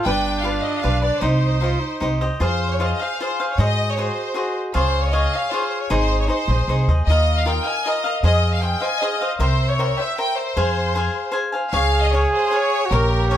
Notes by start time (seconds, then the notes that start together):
0.05 G1 D4 F4 G4 B4 D5 G5
0.42 F4 G4 B4 D5 F5
0.62 D#5
0.79 F5
0.83 B1 F4 G4 B4 D5
1.02 G4 B4 D5
1.18 C2 D#4 G4 C5
1.23 D#4 D#5
1.61 D#4 F4 G4 C5 D#5
1.80 D#4
2.00 C2 D#4 G4 C5 D#5
2.21 G4 C5 D#5
2.40 F2 F4 G#4 C5 F5
2.72 C#5
2.80 F4 G#4 C5 D#5 F5
2.99 G#4 C5 F5
3.20 F4 G#4 C5 F5
3.40 G#4 C5 F5
3.52 C#5
3.58 G#2 F#4 G#4 C5 D#5
3.90 C#5
3.97 F#4 G#4 C5 D#5
4.34 F#4 G#4 C5 D#5
4.74 C#2 F4 G#4 C5 C#5 F5
5.04 C#5
5.11 F4 G#4 C#5 D#5 F5
5.34 G#4 C#5 F5
5.51 F4 G#4 C5 C#5 F5
5.82 C#5
5.90 G#1 D#4 G#4 C5 D#5
6.20 C#5
6.27 D#4 G#4 C5 D#5
6.48 A#1 G#4 C5 D#5
6.68 C2 D#4 G#4 C5 D#5
6.88 D#2 G#4 C5 D#5
7.07 D#2 F4 A#4 D#5
7.11 F5
7.37 F5
7.46 F4 A#4 D#5 F5 G5
7.64 A#4 D#5 F5 G#5
7.85 F4 A#4 D#5 F5
8.04 A#4 D#5 F5
8.23 F2 G#4 C5 D#5 F5
8.53 F5
8.61 G#4 C5 D#5 F5 G5
8.80 C5 D#5 F5 G#5
9.01 G#4 C5 D#5 F5
9.21 C5 D#5 F5
9.39 C2 A#4 C5 E5 G5
9.67 C#5
9.79 A#4 C5 E5 G5
9.98 C5 E5 G5
10.18 A#4 C5 E5 G5
10.37 C5
10.57 F2 G#4 C5 F5 G#5
10.95 G#4 C5 F5 G#5
11.32 G#4 C5 F5 G#5
11.52 C5 F5 G#5
11.72 C#2 G#4 C#5 F5 G#5
12.02 D#5
12.11 G#4 C#5 F5 G#5
12.33 C5
12.51 G#4 C#5 F5 G#5
12.86 F#4
12.91 A#1 G4 A#4 C#5 F5
13.28 A#4 C#5 F5 G#5